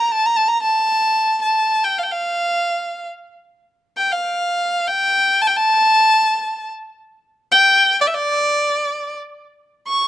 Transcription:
0.08 A#5
0.12 A5
0.26 A#5
0.37 A5
0.48 A#5
0.62 A5
1.42 A5
1.84 G5
1.98 F5
2.03 G5
2.12 F5
3.97 G5
4.12 F5
4.87 G5
5.42 A5
5.47 G5
5.56 A5
7.52 G5
8.01 D5
8.07 E5
8.14 D5
9.88 C#6

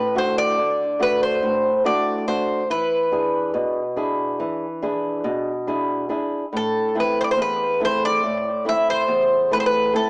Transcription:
Already playing: A2 B4
0.15 A3 D4 F#4 C5
0.38 D5
0.57 D3
0.99 A3 D4 F#4 B4
1.23 C5
1.43 A2
1.84 A3 D4 F#4 D5
2.27 A3 D4 F#4 C5
2.70 E3 B4
3.12 D4 E4 G#4
3.54 B2
3.96 D4 E4 G#4
4.40 E3
4.82 D4 E4 G#4
5.24 B2
5.67 D4 E4 G#4
6.09 D4 E4 G#4
6.53 A2 A4
6.95 A3 C4 E4
7.00 B4
7.21 C5 D5
7.31 C5
7.37 E2
7.42 B4
7.80 A3 C4 E4
7.85 C5
8.05 D5
8.23 A2
8.65 A3 C4 E4 E5
8.90 C5
9.08 E2
9.51 A3 C4 E4 B4
9.60 C5
9.66 B4
9.94 A3 C4 E4 A4

